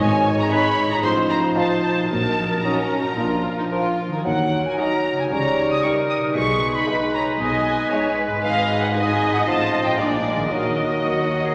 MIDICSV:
0, 0, Header, 1, 13, 480
1, 0, Start_track
1, 0, Time_signature, 4, 2, 24, 8
1, 0, Key_signature, -6, "minor"
1, 0, Tempo, 531444
1, 4318, Tempo, 519481
1, 8638, Tempo, 530035
1, 10532, End_track
2, 0, Start_track
2, 0, Title_t, "Flute"
2, 0, Program_c, 0, 73
2, 5, Note_on_c, 0, 80, 83
2, 332, Note_off_c, 0, 80, 0
2, 348, Note_on_c, 0, 82, 74
2, 471, Note_on_c, 0, 83, 84
2, 485, Note_off_c, 0, 82, 0
2, 826, Note_off_c, 0, 83, 0
2, 832, Note_on_c, 0, 82, 73
2, 944, Note_on_c, 0, 84, 80
2, 958, Note_off_c, 0, 82, 0
2, 1190, Note_on_c, 0, 82, 84
2, 1203, Note_off_c, 0, 84, 0
2, 1417, Note_on_c, 0, 81, 74
2, 1430, Note_off_c, 0, 82, 0
2, 1640, Note_off_c, 0, 81, 0
2, 1646, Note_on_c, 0, 81, 70
2, 1890, Note_off_c, 0, 81, 0
2, 1894, Note_on_c, 0, 81, 74
2, 2371, Note_off_c, 0, 81, 0
2, 2387, Note_on_c, 0, 82, 53
2, 3335, Note_off_c, 0, 82, 0
2, 3829, Note_on_c, 0, 78, 55
2, 4168, Note_off_c, 0, 78, 0
2, 4204, Note_on_c, 0, 80, 52
2, 4256, Note_off_c, 0, 80, 0
2, 4321, Note_on_c, 0, 82, 55
2, 4676, Note_off_c, 0, 82, 0
2, 4689, Note_on_c, 0, 80, 51
2, 4742, Note_off_c, 0, 80, 0
2, 4812, Note_on_c, 0, 82, 64
2, 5161, Note_off_c, 0, 82, 0
2, 5177, Note_on_c, 0, 87, 60
2, 5283, Note_off_c, 0, 87, 0
2, 5289, Note_on_c, 0, 85, 71
2, 5344, Note_off_c, 0, 85, 0
2, 5546, Note_on_c, 0, 87, 70
2, 5771, Note_off_c, 0, 87, 0
2, 5791, Note_on_c, 0, 85, 66
2, 6141, Note_on_c, 0, 83, 64
2, 6155, Note_off_c, 0, 85, 0
2, 6504, Note_on_c, 0, 82, 60
2, 6518, Note_off_c, 0, 83, 0
2, 6751, Note_on_c, 0, 80, 66
2, 6765, Note_off_c, 0, 82, 0
2, 7458, Note_off_c, 0, 80, 0
2, 7704, Note_on_c, 0, 77, 77
2, 8028, Note_off_c, 0, 77, 0
2, 8070, Note_on_c, 0, 78, 52
2, 8117, Note_off_c, 0, 78, 0
2, 8181, Note_on_c, 0, 80, 73
2, 8528, Note_on_c, 0, 78, 64
2, 8542, Note_off_c, 0, 80, 0
2, 8643, Note_off_c, 0, 78, 0
2, 8650, Note_on_c, 0, 81, 67
2, 8991, Note_off_c, 0, 81, 0
2, 9002, Note_on_c, 0, 79, 51
2, 9104, Note_on_c, 0, 77, 59
2, 9118, Note_off_c, 0, 79, 0
2, 9345, Note_off_c, 0, 77, 0
2, 9353, Note_on_c, 0, 74, 51
2, 9407, Note_off_c, 0, 74, 0
2, 9583, Note_on_c, 0, 75, 52
2, 10532, Note_off_c, 0, 75, 0
2, 10532, End_track
3, 0, Start_track
3, 0, Title_t, "Violin section"
3, 0, Program_c, 1, 48
3, 1, Note_on_c, 1, 80, 98
3, 330, Note_off_c, 1, 80, 0
3, 359, Note_on_c, 1, 82, 83
3, 405, Note_off_c, 1, 82, 0
3, 473, Note_on_c, 1, 83, 93
3, 817, Note_on_c, 1, 82, 89
3, 820, Note_off_c, 1, 83, 0
3, 867, Note_off_c, 1, 82, 0
3, 933, Note_on_c, 1, 84, 98
3, 1005, Note_off_c, 1, 84, 0
3, 1170, Note_on_c, 1, 82, 89
3, 1242, Note_off_c, 1, 82, 0
3, 1416, Note_on_c, 1, 81, 78
3, 1634, Note_off_c, 1, 81, 0
3, 1645, Note_on_c, 1, 81, 72
3, 1876, Note_off_c, 1, 81, 0
3, 1887, Note_on_c, 1, 81, 90
3, 2367, Note_off_c, 1, 81, 0
3, 2367, Note_on_c, 1, 82, 66
3, 3344, Note_off_c, 1, 82, 0
3, 3779, Note_on_c, 1, 80, 45
3, 3841, Note_off_c, 1, 80, 0
3, 3842, Note_on_c, 1, 78, 71
3, 4200, Note_off_c, 1, 78, 0
3, 4224, Note_on_c, 1, 80, 59
3, 4328, Note_off_c, 1, 80, 0
3, 4333, Note_on_c, 1, 82, 69
3, 4681, Note_off_c, 1, 82, 0
3, 4703, Note_on_c, 1, 80, 66
3, 4747, Note_off_c, 1, 80, 0
3, 4816, Note_on_c, 1, 82, 73
3, 5162, Note_off_c, 1, 82, 0
3, 5181, Note_on_c, 1, 87, 72
3, 5281, Note_on_c, 1, 85, 63
3, 5290, Note_off_c, 1, 87, 0
3, 5355, Note_off_c, 1, 85, 0
3, 5535, Note_on_c, 1, 87, 72
3, 5609, Note_off_c, 1, 87, 0
3, 5774, Note_on_c, 1, 85, 87
3, 6124, Note_off_c, 1, 85, 0
3, 6140, Note_on_c, 1, 83, 70
3, 6486, Note_off_c, 1, 83, 0
3, 6496, Note_on_c, 1, 82, 81
3, 6570, Note_off_c, 1, 82, 0
3, 6717, Note_on_c, 1, 80, 78
3, 7427, Note_off_c, 1, 80, 0
3, 7690, Note_on_c, 1, 77, 98
3, 8020, Note_off_c, 1, 77, 0
3, 8048, Note_on_c, 1, 78, 72
3, 8159, Note_on_c, 1, 80, 75
3, 8164, Note_off_c, 1, 78, 0
3, 8509, Note_off_c, 1, 80, 0
3, 8531, Note_on_c, 1, 78, 72
3, 8576, Note_off_c, 1, 78, 0
3, 8643, Note_on_c, 1, 81, 81
3, 8988, Note_off_c, 1, 81, 0
3, 8989, Note_on_c, 1, 79, 63
3, 9107, Note_off_c, 1, 79, 0
3, 9113, Note_on_c, 1, 77, 64
3, 9185, Note_off_c, 1, 77, 0
3, 9353, Note_on_c, 1, 74, 54
3, 9425, Note_off_c, 1, 74, 0
3, 9591, Note_on_c, 1, 75, 58
3, 9616, Note_off_c, 1, 75, 0
3, 9649, Note_on_c, 1, 77, 47
3, 9714, Note_off_c, 1, 77, 0
3, 9717, Note_on_c, 1, 75, 61
3, 10532, Note_off_c, 1, 75, 0
3, 10532, End_track
4, 0, Start_track
4, 0, Title_t, "Viola section"
4, 0, Program_c, 2, 48
4, 2, Note_on_c, 2, 73, 93
4, 928, Note_off_c, 2, 73, 0
4, 953, Note_on_c, 2, 72, 73
4, 1418, Note_off_c, 2, 72, 0
4, 1432, Note_on_c, 2, 72, 70
4, 1898, Note_off_c, 2, 72, 0
4, 1918, Note_on_c, 2, 70, 66
4, 3570, Note_off_c, 2, 70, 0
4, 4796, Note_on_c, 2, 73, 55
4, 5246, Note_off_c, 2, 73, 0
4, 5281, Note_on_c, 2, 70, 57
4, 5764, Note_off_c, 2, 70, 0
4, 5772, Note_on_c, 2, 68, 64
4, 6241, Note_off_c, 2, 68, 0
4, 6265, Note_on_c, 2, 71, 58
4, 6491, Note_off_c, 2, 71, 0
4, 6504, Note_on_c, 2, 73, 57
4, 6578, Note_off_c, 2, 73, 0
4, 6742, Note_on_c, 2, 75, 65
4, 7204, Note_off_c, 2, 75, 0
4, 7210, Note_on_c, 2, 73, 62
4, 7443, Note_off_c, 2, 73, 0
4, 7462, Note_on_c, 2, 71, 61
4, 8165, Note_on_c, 2, 75, 71
4, 8170, Note_off_c, 2, 71, 0
4, 9112, Note_off_c, 2, 75, 0
4, 9127, Note_on_c, 2, 74, 58
4, 9596, Note_off_c, 2, 74, 0
4, 9600, Note_on_c, 2, 75, 53
4, 10532, Note_off_c, 2, 75, 0
4, 10532, End_track
5, 0, Start_track
5, 0, Title_t, "Oboe"
5, 0, Program_c, 3, 68
5, 465, Note_on_c, 3, 71, 62
5, 609, Note_off_c, 3, 71, 0
5, 1425, Note_on_c, 3, 72, 53
5, 1570, Note_off_c, 3, 72, 0
5, 2390, Note_on_c, 3, 75, 43
5, 2534, Note_off_c, 3, 75, 0
5, 3358, Note_on_c, 3, 70, 38
5, 3502, Note_off_c, 3, 70, 0
5, 3841, Note_on_c, 3, 70, 48
5, 5729, Note_off_c, 3, 70, 0
5, 5757, Note_on_c, 3, 71, 58
5, 8639, Note_on_c, 3, 72, 51
5, 8653, Note_off_c, 3, 71, 0
5, 9103, Note_off_c, 3, 72, 0
5, 9108, Note_on_c, 3, 70, 47
5, 10003, Note_off_c, 3, 70, 0
5, 10069, Note_on_c, 3, 66, 42
5, 10409, Note_off_c, 3, 66, 0
5, 10444, Note_on_c, 3, 68, 43
5, 10496, Note_off_c, 3, 68, 0
5, 10532, End_track
6, 0, Start_track
6, 0, Title_t, "Violin section"
6, 0, Program_c, 4, 48
6, 458, Note_on_c, 4, 75, 75
6, 466, Note_on_c, 4, 68, 73
6, 816, Note_off_c, 4, 75, 0
6, 820, Note_off_c, 4, 68, 0
6, 1410, Note_on_c, 4, 75, 62
6, 1415, Note_on_c, 4, 65, 66
6, 1773, Note_off_c, 4, 75, 0
6, 1776, Note_off_c, 4, 65, 0
6, 2384, Note_on_c, 4, 61, 67
6, 2722, Note_off_c, 4, 61, 0
6, 2751, Note_on_c, 4, 63, 51
6, 2869, Note_on_c, 4, 65, 57
6, 2871, Note_off_c, 4, 63, 0
6, 3233, Note_off_c, 4, 65, 0
6, 3237, Note_on_c, 4, 63, 44
6, 3284, Note_off_c, 4, 63, 0
6, 3339, Note_on_c, 4, 65, 58
6, 3703, Note_off_c, 4, 65, 0
6, 3726, Note_on_c, 4, 70, 49
6, 3773, Note_off_c, 4, 70, 0
6, 4324, Note_on_c, 4, 75, 56
6, 4326, Note_on_c, 4, 66, 55
6, 4681, Note_off_c, 4, 75, 0
6, 4683, Note_off_c, 4, 66, 0
6, 5296, Note_on_c, 4, 75, 53
6, 5298, Note_on_c, 4, 67, 54
6, 5648, Note_off_c, 4, 75, 0
6, 5649, Note_off_c, 4, 67, 0
6, 6243, Note_on_c, 4, 75, 63
6, 6248, Note_on_c, 4, 68, 57
6, 6601, Note_off_c, 4, 75, 0
6, 6604, Note_off_c, 4, 68, 0
6, 7225, Note_on_c, 4, 68, 57
6, 7231, Note_on_c, 4, 75, 66
6, 7573, Note_off_c, 4, 68, 0
6, 7576, Note_off_c, 4, 75, 0
6, 7700, Note_on_c, 4, 68, 53
6, 7702, Note_on_c, 4, 75, 52
6, 8136, Note_off_c, 4, 68, 0
6, 8137, Note_off_c, 4, 75, 0
6, 8172, Note_on_c, 4, 68, 60
6, 8184, Note_on_c, 4, 75, 55
6, 8633, Note_off_c, 4, 68, 0
6, 8639, Note_off_c, 4, 75, 0
6, 8649, Note_on_c, 4, 65, 52
6, 8650, Note_on_c, 4, 75, 53
6, 9108, Note_off_c, 4, 75, 0
6, 9108, Note_on_c, 4, 68, 50
6, 9109, Note_on_c, 4, 74, 50
6, 9116, Note_off_c, 4, 65, 0
6, 9587, Note_off_c, 4, 68, 0
6, 9587, Note_off_c, 4, 74, 0
6, 9589, Note_on_c, 4, 66, 41
6, 9591, Note_on_c, 4, 70, 40
6, 10532, Note_off_c, 4, 66, 0
6, 10532, Note_off_c, 4, 70, 0
6, 10532, End_track
7, 0, Start_track
7, 0, Title_t, "Harp"
7, 0, Program_c, 5, 46
7, 0, Note_on_c, 5, 44, 66
7, 0, Note_on_c, 5, 63, 54
7, 0, Note_on_c, 5, 68, 52
7, 0, Note_on_c, 5, 71, 54
7, 780, Note_on_c, 5, 45, 60
7, 811, Note_off_c, 5, 63, 0
7, 822, Note_on_c, 5, 63, 51
7, 862, Note_on_c, 5, 65, 52
7, 881, Note_off_c, 5, 44, 0
7, 903, Note_on_c, 5, 72, 53
7, 922, Note_off_c, 5, 68, 0
7, 944, Note_off_c, 5, 71, 0
7, 1736, Note_on_c, 5, 46, 50
7, 1765, Note_off_c, 5, 63, 0
7, 1776, Note_on_c, 5, 63, 43
7, 1818, Note_on_c, 5, 66, 43
7, 1840, Note_off_c, 5, 45, 0
7, 1858, Note_on_c, 5, 75, 39
7, 1881, Note_off_c, 5, 65, 0
7, 1902, Note_off_c, 5, 72, 0
7, 2694, Note_off_c, 5, 46, 0
7, 2705, Note_on_c, 5, 46, 42
7, 2749, Note_on_c, 5, 62, 37
7, 2788, Note_on_c, 5, 65, 36
7, 2825, Note_off_c, 5, 63, 0
7, 2828, Note_on_c, 5, 70, 38
7, 2846, Note_off_c, 5, 66, 0
7, 2866, Note_off_c, 5, 75, 0
7, 3683, Note_on_c, 5, 51, 46
7, 3721, Note_on_c, 5, 63, 37
7, 3762, Note_on_c, 5, 66, 36
7, 3775, Note_off_c, 5, 46, 0
7, 3794, Note_off_c, 5, 70, 0
7, 3798, Note_off_c, 5, 62, 0
7, 3805, Note_on_c, 5, 70, 39
7, 3817, Note_off_c, 5, 65, 0
7, 4629, Note_on_c, 5, 49, 46
7, 4662, Note_off_c, 5, 63, 0
7, 4673, Note_on_c, 5, 63, 36
7, 4715, Note_on_c, 5, 67, 39
7, 4741, Note_off_c, 5, 51, 0
7, 4744, Note_off_c, 5, 70, 0
7, 4755, Note_on_c, 5, 70, 37
7, 4782, Note_off_c, 5, 66, 0
7, 5602, Note_on_c, 5, 47, 49
7, 5630, Note_off_c, 5, 63, 0
7, 5641, Note_on_c, 5, 63, 38
7, 5682, Note_on_c, 5, 68, 42
7, 5698, Note_off_c, 5, 49, 0
7, 5728, Note_on_c, 5, 71, 43
7, 5740, Note_off_c, 5, 67, 0
7, 5760, Note_off_c, 5, 70, 0
7, 7535, Note_on_c, 5, 44, 52
7, 7563, Note_off_c, 5, 63, 0
7, 7574, Note_on_c, 5, 63, 42
7, 7603, Note_off_c, 5, 68, 0
7, 7614, Note_on_c, 5, 68, 47
7, 7623, Note_off_c, 5, 47, 0
7, 7648, Note_off_c, 5, 71, 0
7, 7659, Note_on_c, 5, 71, 43
7, 8480, Note_on_c, 5, 45, 49
7, 8510, Note_off_c, 5, 63, 0
7, 8522, Note_on_c, 5, 63, 46
7, 8560, Note_on_c, 5, 65, 42
7, 8581, Note_off_c, 5, 44, 0
7, 8603, Note_on_c, 5, 72, 42
7, 8621, Note_off_c, 5, 68, 0
7, 8643, Note_off_c, 5, 71, 0
7, 8953, Note_on_c, 5, 46, 42
7, 8996, Note_on_c, 5, 62, 37
7, 9039, Note_on_c, 5, 68, 35
7, 9052, Note_off_c, 5, 45, 0
7, 9073, Note_off_c, 5, 63, 0
7, 9077, Note_on_c, 5, 70, 39
7, 9113, Note_off_c, 5, 72, 0
7, 9441, Note_on_c, 5, 51, 36
7, 9478, Note_on_c, 5, 63, 31
7, 9520, Note_on_c, 5, 66, 33
7, 9528, Note_off_c, 5, 46, 0
7, 9550, Note_off_c, 5, 62, 0
7, 9552, Note_off_c, 5, 70, 0
7, 9563, Note_on_c, 5, 70, 31
7, 9569, Note_off_c, 5, 65, 0
7, 9571, Note_off_c, 5, 68, 0
7, 10532, Note_off_c, 5, 51, 0
7, 10532, Note_off_c, 5, 63, 0
7, 10532, Note_off_c, 5, 66, 0
7, 10532, Note_off_c, 5, 70, 0
7, 10532, End_track
8, 0, Start_track
8, 0, Title_t, "Clarinet"
8, 0, Program_c, 6, 71
8, 476, Note_on_c, 6, 63, 72
8, 620, Note_off_c, 6, 63, 0
8, 1435, Note_on_c, 6, 63, 50
8, 1580, Note_off_c, 6, 63, 0
8, 2384, Note_on_c, 6, 63, 52
8, 2528, Note_off_c, 6, 63, 0
8, 3356, Note_on_c, 6, 62, 37
8, 3501, Note_off_c, 6, 62, 0
8, 3829, Note_on_c, 6, 63, 64
8, 7643, Note_off_c, 6, 63, 0
8, 7702, Note_on_c, 6, 63, 67
8, 9133, Note_on_c, 6, 62, 46
8, 9147, Note_off_c, 6, 63, 0
8, 9592, Note_on_c, 6, 63, 46
8, 9605, Note_off_c, 6, 62, 0
8, 10532, Note_off_c, 6, 63, 0
8, 10532, End_track
9, 0, Start_track
9, 0, Title_t, "French horn section"
9, 0, Program_c, 7, 60
9, 0, Note_on_c, 7, 56, 63
9, 2, Note_on_c, 7, 63, 81
9, 910, Note_off_c, 7, 56, 0
9, 932, Note_on_c, 7, 53, 59
9, 1897, Note_off_c, 7, 53, 0
9, 1900, Note_on_c, 7, 54, 51
9, 2835, Note_off_c, 7, 63, 0
9, 2848, Note_off_c, 7, 54, 0
9, 2872, Note_on_c, 7, 62, 52
9, 2875, Note_on_c, 7, 53, 44
9, 3597, Note_off_c, 7, 62, 0
9, 3599, Note_off_c, 7, 53, 0
9, 4312, Note_on_c, 7, 54, 46
9, 4316, Note_on_c, 7, 63, 43
9, 4459, Note_off_c, 7, 54, 0
9, 4464, Note_off_c, 7, 63, 0
9, 5291, Note_on_c, 7, 63, 43
9, 5293, Note_on_c, 7, 55, 48
9, 5439, Note_off_c, 7, 63, 0
9, 5441, Note_off_c, 7, 55, 0
9, 6239, Note_on_c, 7, 56, 51
9, 6240, Note_on_c, 7, 63, 52
9, 6387, Note_off_c, 7, 56, 0
9, 6388, Note_off_c, 7, 63, 0
9, 7210, Note_on_c, 7, 63, 57
9, 7211, Note_on_c, 7, 56, 50
9, 7358, Note_off_c, 7, 56, 0
9, 7358, Note_off_c, 7, 63, 0
9, 8169, Note_on_c, 7, 63, 53
9, 8171, Note_on_c, 7, 56, 51
9, 8317, Note_off_c, 7, 63, 0
9, 8319, Note_off_c, 7, 56, 0
9, 8646, Note_on_c, 7, 53, 44
9, 8648, Note_on_c, 7, 63, 42
9, 8790, Note_off_c, 7, 53, 0
9, 8793, Note_off_c, 7, 63, 0
9, 9124, Note_on_c, 7, 62, 45
9, 9129, Note_on_c, 7, 56, 43
9, 9269, Note_off_c, 7, 62, 0
9, 9274, Note_off_c, 7, 56, 0
9, 10085, Note_on_c, 7, 54, 34
9, 10088, Note_on_c, 7, 63, 38
9, 10230, Note_off_c, 7, 54, 0
9, 10233, Note_off_c, 7, 63, 0
9, 10532, End_track
10, 0, Start_track
10, 0, Title_t, "Bassoon"
10, 0, Program_c, 8, 70
10, 463, Note_on_c, 8, 56, 60
10, 607, Note_off_c, 8, 56, 0
10, 1419, Note_on_c, 8, 53, 58
10, 1564, Note_off_c, 8, 53, 0
10, 2390, Note_on_c, 8, 54, 46
10, 2534, Note_off_c, 8, 54, 0
10, 3355, Note_on_c, 8, 53, 40
10, 3500, Note_off_c, 8, 53, 0
10, 3835, Note_on_c, 8, 54, 54
10, 4808, Note_on_c, 8, 55, 53
10, 4822, Note_off_c, 8, 54, 0
10, 5770, Note_on_c, 8, 56, 55
10, 5784, Note_off_c, 8, 55, 0
10, 8640, Note_off_c, 8, 56, 0
10, 8653, Note_on_c, 8, 53, 50
10, 9123, Note_on_c, 8, 56, 50
10, 9137, Note_off_c, 8, 53, 0
10, 9592, Note_on_c, 8, 54, 45
10, 9606, Note_off_c, 8, 56, 0
10, 10532, Note_off_c, 8, 54, 0
10, 10532, End_track
11, 0, Start_track
11, 0, Title_t, "Cello section"
11, 0, Program_c, 10, 48
11, 0, Note_on_c, 10, 44, 91
11, 373, Note_off_c, 10, 44, 0
11, 935, Note_on_c, 10, 45, 78
11, 1318, Note_off_c, 10, 45, 0
11, 1904, Note_on_c, 10, 46, 66
11, 2285, Note_off_c, 10, 46, 0
11, 2877, Note_on_c, 10, 46, 55
11, 3256, Note_off_c, 10, 46, 0
11, 3843, Note_on_c, 10, 51, 65
11, 4219, Note_off_c, 10, 51, 0
11, 4807, Note_on_c, 10, 49, 56
11, 5185, Note_off_c, 10, 49, 0
11, 5764, Note_on_c, 10, 47, 71
11, 6146, Note_off_c, 10, 47, 0
11, 6732, Note_on_c, 10, 47, 64
11, 7108, Note_off_c, 10, 47, 0
11, 7694, Note_on_c, 10, 44, 63
11, 8605, Note_off_c, 10, 44, 0
11, 8642, Note_on_c, 10, 45, 52
11, 9104, Note_off_c, 10, 45, 0
11, 9110, Note_on_c, 10, 46, 51
11, 9588, Note_off_c, 10, 46, 0
11, 9593, Note_on_c, 10, 51, 44
11, 10532, Note_off_c, 10, 51, 0
11, 10532, End_track
12, 0, Start_track
12, 0, Title_t, "Double bass section"
12, 0, Program_c, 11, 48
12, 0, Note_on_c, 11, 32, 86
12, 371, Note_off_c, 11, 32, 0
12, 938, Note_on_c, 11, 33, 73
12, 1319, Note_off_c, 11, 33, 0
12, 1900, Note_on_c, 11, 34, 69
12, 2283, Note_off_c, 11, 34, 0
12, 2868, Note_on_c, 11, 34, 50
12, 3251, Note_off_c, 11, 34, 0
12, 3836, Note_on_c, 11, 39, 62
12, 4216, Note_off_c, 11, 39, 0
12, 4803, Note_on_c, 11, 37, 57
12, 5182, Note_off_c, 11, 37, 0
12, 5771, Note_on_c, 11, 35, 69
12, 6149, Note_off_c, 11, 35, 0
12, 6730, Note_on_c, 11, 35, 63
12, 7107, Note_off_c, 11, 35, 0
12, 7700, Note_on_c, 11, 32, 60
12, 8607, Note_off_c, 11, 32, 0
12, 8642, Note_on_c, 11, 33, 57
12, 9104, Note_off_c, 11, 33, 0
12, 9114, Note_on_c, 11, 34, 50
12, 9590, Note_off_c, 11, 34, 0
12, 9592, Note_on_c, 11, 39, 48
12, 10532, Note_off_c, 11, 39, 0
12, 10532, End_track
13, 0, Start_track
13, 0, Title_t, "Tuba"
13, 0, Program_c, 12, 58
13, 0, Note_on_c, 12, 32, 89
13, 373, Note_off_c, 12, 32, 0
13, 945, Note_on_c, 12, 33, 76
13, 1323, Note_off_c, 12, 33, 0
13, 1900, Note_on_c, 12, 34, 74
13, 2283, Note_off_c, 12, 34, 0
13, 2872, Note_on_c, 12, 34, 55
13, 3253, Note_off_c, 12, 34, 0
13, 3838, Note_on_c, 12, 39, 67
13, 4217, Note_off_c, 12, 39, 0
13, 4811, Note_on_c, 12, 37, 62
13, 5187, Note_off_c, 12, 37, 0
13, 5769, Note_on_c, 12, 35, 68
13, 6148, Note_off_c, 12, 35, 0
13, 6734, Note_on_c, 12, 35, 68
13, 7109, Note_off_c, 12, 35, 0
13, 7697, Note_on_c, 12, 32, 63
13, 8606, Note_off_c, 12, 32, 0
13, 8650, Note_on_c, 12, 33, 54
13, 9115, Note_on_c, 12, 34, 47
13, 9129, Note_off_c, 12, 33, 0
13, 9592, Note_on_c, 12, 39, 50
13, 9606, Note_off_c, 12, 34, 0
13, 10532, Note_off_c, 12, 39, 0
13, 10532, End_track
0, 0, End_of_file